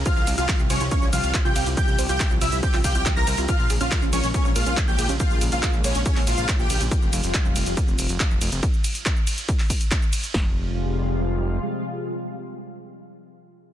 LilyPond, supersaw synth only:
\new Staff \with { instrumentName = "Supersaw synth" } { \time 4/4 \key f \minor \tempo 4 = 140 <f' f''>8 r16 <f' f''>8 r16 <des' des''>16 r16 <des' des''>16 r16 <f' f''>8 r16 <g' g''>8 r16 | <g' g''>8 r16 <g' g''>8 r16 <e' e''>16 r16 <g' g''>16 r16 <g' g''>8 r16 <bes' bes''>8 r16 | <f' f''>8 r16 <f' f''>8 r16 <des' des''>16 r16 <des' des''>16 r16 <f' f''>8 r16 <g' g''>8 r16 | <f' f''>8 r16 <f' f''>8 r16 <des' des''>16 r16 <des' des''>16 r16 <f' f''>8 r16 <g' g''>8 r16 |
r1 | r1 | r1 | r1 | }